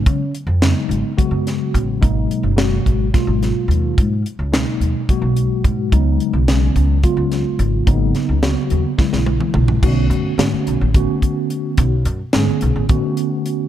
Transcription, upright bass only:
\new Staff \with { instrumentName = "Upright bass" } { \clef bass \time 7/8 \key gis \dorian \tempo 4 = 108 cis8 r16 eis,8 r16 gis,,16 r8 fis,8 r16 a,,8 | gis,,8 r16 fis,,8. gis,,8 r16 gis,,8 r16 dis,8 | gis,8 r16 cis,8 r16 dis,16 r8 b,,8 r16 gis,8 | cis,8 r16 b,,8. cis,8 r16 cis,8 r16 gis,,8 |
gis,,8 r16 cis,8 r16 dis,16 r8 ais,,8 r16 ais,,8 | \key b \dorian b,,8 fis,16 r16 gis,16 r16 b,,16 a,,8 r4 r16 | b,,8 fis,16 r16 gis,16 r16 b,,16 a,,8 r4 r16 | }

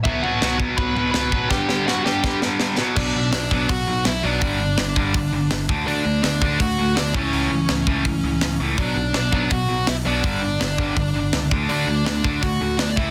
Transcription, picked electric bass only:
\new Staff \with { instrumentName = "Picked electric bass" } { \clef bass \time 4/4 \key b \minor \tempo 4 = 165 r1 | r1 | b,,8 b,,8 b,,8 b,,8 b,,8 b,,8 b,,8 b,,8 | g,,8 g,,8 g,,8 g,,8 g,,8 g,,8 g,,8 d,8 |
d,8 d,8 d,8 d,8 d,8 d,8 d,8 cis,8 | cis,8 cis,8 cis,8 cis,8 cis,8 cis,8 cis,8 cis,8 | b,,8 b,,8 b,,8 b,,8 b,,8 b,,8 b,,8 b,,8 | g,,8 g,,8 g,,8 g,,8 g,,8 g,,8 cis,8 d,8 |
d,8 d,8 d,8 d,8 d,8 d,8 d,8 cis,8 | }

